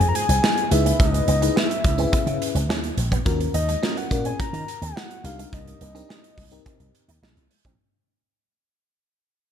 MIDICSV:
0, 0, Header, 1, 9, 480
1, 0, Start_track
1, 0, Tempo, 566038
1, 845, Time_signature, 4, 2, 24, 8
1, 8066, End_track
2, 0, Start_track
2, 0, Title_t, "Soft synth lead"
2, 0, Program_c, 0, 80
2, 72, Note_on_c, 0, 82, 76
2, 129, Note_on_c, 0, 80, 119
2, 142, Note_off_c, 0, 82, 0
2, 604, Note_on_c, 0, 76, 97
2, 617, Note_off_c, 0, 80, 0
2, 849, Note_on_c, 0, 75, 97
2, 861, Note_off_c, 0, 76, 0
2, 1081, Note_off_c, 0, 75, 0
2, 1086, Note_on_c, 0, 75, 106
2, 1322, Note_on_c, 0, 76, 94
2, 1335, Note_off_c, 0, 75, 0
2, 2523, Note_off_c, 0, 76, 0
2, 3005, Note_on_c, 0, 75, 109
2, 3369, Note_on_c, 0, 78, 94
2, 3381, Note_off_c, 0, 75, 0
2, 3604, Note_off_c, 0, 78, 0
2, 3609, Note_on_c, 0, 80, 104
2, 3718, Note_off_c, 0, 80, 0
2, 3730, Note_on_c, 0, 82, 127
2, 4093, Note_on_c, 0, 78, 107
2, 4106, Note_off_c, 0, 82, 0
2, 4453, Note_on_c, 0, 77, 98
2, 4465, Note_off_c, 0, 78, 0
2, 4688, Note_off_c, 0, 77, 0
2, 4694, Note_on_c, 0, 75, 99
2, 6095, Note_off_c, 0, 75, 0
2, 8066, End_track
3, 0, Start_track
3, 0, Title_t, "FM electric piano"
3, 0, Program_c, 1, 5
3, 603, Note_on_c, 1, 63, 76
3, 605, Note_on_c, 1, 64, 78
3, 608, Note_on_c, 1, 68, 72
3, 611, Note_on_c, 1, 71, 89
3, 1083, Note_off_c, 1, 63, 0
3, 1085, Note_off_c, 1, 64, 0
3, 1086, Note_off_c, 1, 68, 0
3, 1087, Note_off_c, 1, 71, 0
3, 1203, Note_on_c, 1, 63, 79
3, 1204, Note_on_c, 1, 64, 72
3, 1208, Note_on_c, 1, 68, 75
3, 1210, Note_on_c, 1, 71, 89
3, 1421, Note_off_c, 1, 63, 0
3, 1422, Note_off_c, 1, 64, 0
3, 1424, Note_off_c, 1, 68, 0
3, 1425, Note_off_c, 1, 71, 0
3, 1678, Note_on_c, 1, 61, 75
3, 1679, Note_on_c, 1, 64, 74
3, 1681, Note_on_c, 1, 68, 63
3, 1685, Note_on_c, 1, 71, 78
3, 2116, Note_off_c, 1, 61, 0
3, 2117, Note_off_c, 1, 64, 0
3, 2118, Note_off_c, 1, 68, 0
3, 2120, Note_off_c, 1, 71, 0
3, 2758, Note_on_c, 1, 61, 87
3, 2761, Note_on_c, 1, 65, 68
3, 2763, Note_on_c, 1, 66, 77
3, 2766, Note_on_c, 1, 70, 95
3, 2979, Note_off_c, 1, 61, 0
3, 2980, Note_off_c, 1, 65, 0
3, 2981, Note_off_c, 1, 66, 0
3, 2982, Note_off_c, 1, 70, 0
3, 3244, Note_on_c, 1, 61, 86
3, 3246, Note_on_c, 1, 65, 71
3, 3247, Note_on_c, 1, 66, 69
3, 3251, Note_on_c, 1, 70, 95
3, 3353, Note_off_c, 1, 61, 0
3, 3354, Note_off_c, 1, 65, 0
3, 3355, Note_off_c, 1, 66, 0
3, 3356, Note_off_c, 1, 70, 0
3, 3481, Note_on_c, 1, 61, 75
3, 3485, Note_on_c, 1, 65, 62
3, 3486, Note_on_c, 1, 66, 66
3, 3490, Note_on_c, 1, 70, 85
3, 3918, Note_off_c, 1, 61, 0
3, 3920, Note_off_c, 1, 65, 0
3, 3920, Note_off_c, 1, 66, 0
3, 3922, Note_off_c, 1, 70, 0
3, 4446, Note_on_c, 1, 62, 78
3, 4448, Note_on_c, 1, 67, 74
3, 4449, Note_on_c, 1, 63, 72
3, 4451, Note_on_c, 1, 70, 80
3, 4925, Note_off_c, 1, 62, 0
3, 4926, Note_off_c, 1, 63, 0
3, 4926, Note_off_c, 1, 67, 0
3, 4927, Note_off_c, 1, 70, 0
3, 5043, Note_on_c, 1, 62, 81
3, 5044, Note_on_c, 1, 63, 74
3, 5047, Note_on_c, 1, 67, 69
3, 5050, Note_on_c, 1, 70, 90
3, 5261, Note_off_c, 1, 62, 0
3, 5261, Note_off_c, 1, 63, 0
3, 5263, Note_off_c, 1, 67, 0
3, 5265, Note_off_c, 1, 70, 0
3, 5521, Note_on_c, 1, 60, 84
3, 5524, Note_on_c, 1, 63, 81
3, 5526, Note_on_c, 1, 67, 81
3, 5527, Note_on_c, 1, 70, 89
3, 5958, Note_off_c, 1, 60, 0
3, 5959, Note_off_c, 1, 63, 0
3, 5960, Note_off_c, 1, 67, 0
3, 5961, Note_off_c, 1, 70, 0
3, 8066, End_track
4, 0, Start_track
4, 0, Title_t, "Analog polysynth"
4, 0, Program_c, 2, 90
4, 129, Note_on_c, 2, 56, 79
4, 129, Note_on_c, 2, 68, 99
4, 223, Note_off_c, 2, 56, 0
4, 223, Note_off_c, 2, 68, 0
4, 8066, End_track
5, 0, Start_track
5, 0, Title_t, "Clean electric guitar"
5, 0, Program_c, 3, 27
5, 248, Note_on_c, 3, 60, 68
5, 339, Note_off_c, 3, 60, 0
5, 367, Note_on_c, 3, 63, 72
5, 458, Note_off_c, 3, 63, 0
5, 723, Note_on_c, 3, 58, 82
5, 816, Note_off_c, 3, 58, 0
5, 1084, Note_on_c, 3, 59, 83
5, 1177, Note_off_c, 3, 59, 0
5, 1204, Note_on_c, 3, 58, 73
5, 1297, Note_off_c, 3, 58, 0
5, 1325, Note_on_c, 3, 59, 83
5, 1417, Note_off_c, 3, 59, 0
5, 1685, Note_on_c, 3, 60, 77
5, 1777, Note_off_c, 3, 60, 0
5, 1802, Note_on_c, 3, 59, 78
5, 1895, Note_off_c, 3, 59, 0
5, 2163, Note_on_c, 3, 60, 75
5, 2256, Note_off_c, 3, 60, 0
5, 2285, Note_on_c, 3, 61, 78
5, 2377, Note_off_c, 3, 61, 0
5, 2642, Note_on_c, 3, 59, 74
5, 2735, Note_off_c, 3, 59, 0
5, 3005, Note_on_c, 3, 58, 89
5, 3097, Note_off_c, 3, 58, 0
5, 3126, Note_on_c, 3, 56, 73
5, 3218, Note_off_c, 3, 56, 0
5, 3245, Note_on_c, 3, 58, 83
5, 3337, Note_off_c, 3, 58, 0
5, 3605, Note_on_c, 3, 60, 81
5, 3697, Note_off_c, 3, 60, 0
5, 3727, Note_on_c, 3, 58, 77
5, 3819, Note_off_c, 3, 58, 0
5, 4087, Note_on_c, 3, 60, 75
5, 4179, Note_off_c, 3, 60, 0
5, 4208, Note_on_c, 3, 63, 74
5, 4299, Note_off_c, 3, 63, 0
5, 4568, Note_on_c, 3, 56, 79
5, 4659, Note_off_c, 3, 56, 0
5, 4930, Note_on_c, 3, 58, 84
5, 5020, Note_off_c, 3, 58, 0
5, 5044, Note_on_c, 3, 60, 75
5, 5137, Note_off_c, 3, 60, 0
5, 5165, Note_on_c, 3, 60, 73
5, 5257, Note_off_c, 3, 60, 0
5, 5525, Note_on_c, 3, 58, 80
5, 5617, Note_off_c, 3, 58, 0
5, 5645, Note_on_c, 3, 60, 78
5, 5737, Note_off_c, 3, 60, 0
5, 6007, Note_on_c, 3, 63, 77
5, 6098, Note_off_c, 3, 63, 0
5, 6129, Note_on_c, 3, 63, 74
5, 6220, Note_off_c, 3, 63, 0
5, 6487, Note_on_c, 3, 60, 75
5, 6578, Note_off_c, 3, 60, 0
5, 8066, End_track
6, 0, Start_track
6, 0, Title_t, "Slap bass"
6, 0, Program_c, 4, 36
6, 2, Note_on_c, 4, 41, 89
6, 89, Note_off_c, 4, 41, 0
6, 243, Note_on_c, 4, 36, 86
6, 329, Note_off_c, 4, 36, 0
6, 604, Note_on_c, 4, 37, 103
6, 776, Note_off_c, 4, 37, 0
6, 845, Note_on_c, 4, 37, 93
6, 1016, Note_off_c, 4, 37, 0
6, 1083, Note_on_c, 4, 37, 96
6, 1255, Note_off_c, 4, 37, 0
6, 1563, Note_on_c, 4, 37, 89
6, 1735, Note_off_c, 4, 37, 0
6, 1921, Note_on_c, 4, 49, 95
6, 2008, Note_off_c, 4, 49, 0
6, 2160, Note_on_c, 4, 37, 80
6, 2247, Note_off_c, 4, 37, 0
6, 2281, Note_on_c, 4, 39, 97
6, 2453, Note_off_c, 4, 39, 0
6, 2519, Note_on_c, 4, 34, 91
6, 2692, Note_off_c, 4, 34, 0
6, 2765, Note_on_c, 4, 39, 110
6, 2936, Note_off_c, 4, 39, 0
6, 3002, Note_on_c, 4, 39, 85
6, 3174, Note_off_c, 4, 39, 0
6, 3484, Note_on_c, 4, 46, 85
6, 3656, Note_off_c, 4, 46, 0
6, 3841, Note_on_c, 4, 51, 86
6, 3928, Note_off_c, 4, 51, 0
6, 4083, Note_on_c, 4, 39, 96
6, 4169, Note_off_c, 4, 39, 0
6, 4442, Note_on_c, 4, 36, 98
6, 4614, Note_off_c, 4, 36, 0
6, 4686, Note_on_c, 4, 36, 92
6, 4857, Note_off_c, 4, 36, 0
6, 4926, Note_on_c, 4, 36, 95
6, 5097, Note_off_c, 4, 36, 0
6, 5406, Note_on_c, 4, 36, 85
6, 5577, Note_off_c, 4, 36, 0
6, 5648, Note_on_c, 4, 48, 107
6, 5732, Note_off_c, 4, 48, 0
6, 5765, Note_on_c, 4, 36, 79
6, 5850, Note_off_c, 4, 36, 0
6, 6006, Note_on_c, 4, 39, 90
6, 6091, Note_off_c, 4, 39, 0
6, 6124, Note_on_c, 4, 34, 81
6, 6210, Note_off_c, 4, 34, 0
6, 6246, Note_on_c, 4, 36, 84
6, 6331, Note_off_c, 4, 36, 0
6, 6485, Note_on_c, 4, 34, 83
6, 6570, Note_off_c, 4, 34, 0
6, 8066, End_track
7, 0, Start_track
7, 0, Title_t, "Muted clean electric guitar strokes"
7, 7, Note_on_c, 9, 29, 44
7, 92, Note_off_c, 9, 29, 0
7, 605, Note_on_c, 9, 29, 48
7, 690, Note_off_c, 9, 29, 0
7, 964, Note_on_c, 9, 29, 48
7, 1048, Note_off_c, 9, 29, 0
7, 1445, Note_on_c, 9, 29, 39
7, 1530, Note_off_c, 9, 29, 0
7, 1923, Note_on_c, 9, 29, 47
7, 2008, Note_off_c, 9, 29, 0
7, 2527, Note_on_c, 9, 29, 50
7, 2612, Note_off_c, 9, 29, 0
7, 2884, Note_on_c, 9, 29, 48
7, 2969, Note_off_c, 9, 29, 0
7, 3369, Note_on_c, 9, 29, 43
7, 3454, Note_off_c, 9, 29, 0
7, 3847, Note_on_c, 9, 29, 47
7, 3932, Note_off_c, 9, 29, 0
7, 4450, Note_on_c, 9, 29, 50
7, 4534, Note_off_c, 9, 29, 0
7, 4809, Note_on_c, 9, 29, 49
7, 4894, Note_off_c, 9, 29, 0
7, 5286, Note_on_c, 9, 29, 46
7, 5371, Note_off_c, 9, 29, 0
7, 5767, Note_on_c, 9, 29, 45
7, 5852, Note_off_c, 9, 29, 0
7, 6364, Note_on_c, 9, 29, 51
7, 6449, Note_off_c, 9, 29, 0
7, 8066, End_track
8, 0, Start_track
8, 0, Title_t, "Muted slap bass strokes"
8, 1805, Note_on_c, 9, 29, 48
8, 1890, Note_off_c, 9, 29, 0
8, 3727, Note_on_c, 9, 29, 56
8, 3812, Note_off_c, 9, 29, 0
8, 8066, End_track
9, 0, Start_track
9, 0, Title_t, "Drums"
9, 7, Note_on_c, 9, 42, 55
9, 91, Note_off_c, 9, 42, 0
9, 129, Note_on_c, 9, 42, 67
9, 214, Note_off_c, 9, 42, 0
9, 248, Note_on_c, 9, 42, 59
9, 333, Note_off_c, 9, 42, 0
9, 372, Note_on_c, 9, 38, 109
9, 456, Note_off_c, 9, 38, 0
9, 488, Note_on_c, 9, 42, 43
9, 573, Note_off_c, 9, 42, 0
9, 606, Note_on_c, 9, 42, 88
9, 691, Note_off_c, 9, 42, 0
9, 731, Note_on_c, 9, 42, 59
9, 815, Note_off_c, 9, 42, 0
9, 846, Note_on_c, 9, 36, 110
9, 847, Note_on_c, 9, 42, 90
9, 931, Note_off_c, 9, 36, 0
9, 932, Note_off_c, 9, 42, 0
9, 970, Note_on_c, 9, 42, 50
9, 1054, Note_off_c, 9, 42, 0
9, 1084, Note_on_c, 9, 42, 62
9, 1169, Note_off_c, 9, 42, 0
9, 1208, Note_on_c, 9, 42, 51
9, 1293, Note_off_c, 9, 42, 0
9, 1333, Note_on_c, 9, 38, 106
9, 1418, Note_off_c, 9, 38, 0
9, 1450, Note_on_c, 9, 42, 51
9, 1535, Note_off_c, 9, 42, 0
9, 1564, Note_on_c, 9, 42, 98
9, 1565, Note_on_c, 9, 36, 112
9, 1649, Note_off_c, 9, 42, 0
9, 1650, Note_off_c, 9, 36, 0
9, 1682, Note_on_c, 9, 42, 52
9, 1767, Note_off_c, 9, 42, 0
9, 1805, Note_on_c, 9, 42, 108
9, 1807, Note_on_c, 9, 36, 127
9, 1890, Note_off_c, 9, 42, 0
9, 1892, Note_off_c, 9, 36, 0
9, 1925, Note_on_c, 9, 42, 52
9, 2010, Note_off_c, 9, 42, 0
9, 2050, Note_on_c, 9, 42, 77
9, 2135, Note_off_c, 9, 42, 0
9, 2167, Note_on_c, 9, 42, 50
9, 2252, Note_off_c, 9, 42, 0
9, 2291, Note_on_c, 9, 38, 106
9, 2376, Note_off_c, 9, 38, 0
9, 2405, Note_on_c, 9, 42, 45
9, 2490, Note_off_c, 9, 42, 0
9, 2523, Note_on_c, 9, 42, 84
9, 2608, Note_off_c, 9, 42, 0
9, 2644, Note_on_c, 9, 36, 99
9, 2648, Note_on_c, 9, 42, 62
9, 2729, Note_off_c, 9, 36, 0
9, 2733, Note_off_c, 9, 42, 0
9, 2765, Note_on_c, 9, 36, 115
9, 2766, Note_on_c, 9, 42, 80
9, 2850, Note_off_c, 9, 36, 0
9, 2851, Note_off_c, 9, 42, 0
9, 2888, Note_on_c, 9, 42, 49
9, 2972, Note_off_c, 9, 42, 0
9, 3004, Note_on_c, 9, 42, 65
9, 3089, Note_off_c, 9, 42, 0
9, 3127, Note_on_c, 9, 42, 51
9, 3212, Note_off_c, 9, 42, 0
9, 3251, Note_on_c, 9, 38, 94
9, 3336, Note_off_c, 9, 38, 0
9, 3370, Note_on_c, 9, 42, 52
9, 3454, Note_off_c, 9, 42, 0
9, 3486, Note_on_c, 9, 36, 111
9, 3486, Note_on_c, 9, 42, 98
9, 3571, Note_off_c, 9, 36, 0
9, 3571, Note_off_c, 9, 42, 0
9, 3605, Note_on_c, 9, 42, 52
9, 3689, Note_off_c, 9, 42, 0
9, 3728, Note_on_c, 9, 36, 121
9, 3729, Note_on_c, 9, 42, 101
9, 3813, Note_off_c, 9, 36, 0
9, 3814, Note_off_c, 9, 42, 0
9, 3848, Note_on_c, 9, 42, 54
9, 3933, Note_off_c, 9, 42, 0
9, 3972, Note_on_c, 9, 42, 73
9, 4056, Note_off_c, 9, 42, 0
9, 4089, Note_on_c, 9, 42, 55
9, 4174, Note_off_c, 9, 42, 0
9, 4216, Note_on_c, 9, 38, 111
9, 4301, Note_off_c, 9, 38, 0
9, 4331, Note_on_c, 9, 42, 46
9, 4416, Note_off_c, 9, 42, 0
9, 4449, Note_on_c, 9, 42, 95
9, 4533, Note_off_c, 9, 42, 0
9, 4574, Note_on_c, 9, 42, 57
9, 4658, Note_off_c, 9, 42, 0
9, 4688, Note_on_c, 9, 36, 115
9, 4690, Note_on_c, 9, 42, 89
9, 4773, Note_off_c, 9, 36, 0
9, 4775, Note_off_c, 9, 42, 0
9, 4812, Note_on_c, 9, 42, 51
9, 4897, Note_off_c, 9, 42, 0
9, 4927, Note_on_c, 9, 42, 63
9, 5011, Note_off_c, 9, 42, 0
9, 5051, Note_on_c, 9, 42, 50
9, 5136, Note_off_c, 9, 42, 0
9, 5176, Note_on_c, 9, 38, 103
9, 5260, Note_off_c, 9, 38, 0
9, 5292, Note_on_c, 9, 42, 53
9, 5377, Note_off_c, 9, 42, 0
9, 5408, Note_on_c, 9, 36, 102
9, 5408, Note_on_c, 9, 46, 100
9, 5492, Note_off_c, 9, 36, 0
9, 5493, Note_off_c, 9, 46, 0
9, 5523, Note_on_c, 9, 42, 53
9, 5608, Note_off_c, 9, 42, 0
9, 5647, Note_on_c, 9, 42, 100
9, 5649, Note_on_c, 9, 36, 124
9, 5732, Note_off_c, 9, 42, 0
9, 5734, Note_off_c, 9, 36, 0
9, 5767, Note_on_c, 9, 42, 55
9, 5852, Note_off_c, 9, 42, 0
9, 5891, Note_on_c, 9, 42, 74
9, 5976, Note_off_c, 9, 42, 0
9, 6010, Note_on_c, 9, 42, 60
9, 6095, Note_off_c, 9, 42, 0
9, 6135, Note_on_c, 9, 38, 98
9, 6220, Note_off_c, 9, 38, 0
9, 6249, Note_on_c, 9, 42, 41
9, 6334, Note_off_c, 9, 42, 0
9, 6365, Note_on_c, 9, 46, 85
9, 6450, Note_off_c, 9, 46, 0
9, 6486, Note_on_c, 9, 36, 89
9, 6490, Note_on_c, 9, 42, 62
9, 6571, Note_off_c, 9, 36, 0
9, 6575, Note_off_c, 9, 42, 0
9, 8066, End_track
0, 0, End_of_file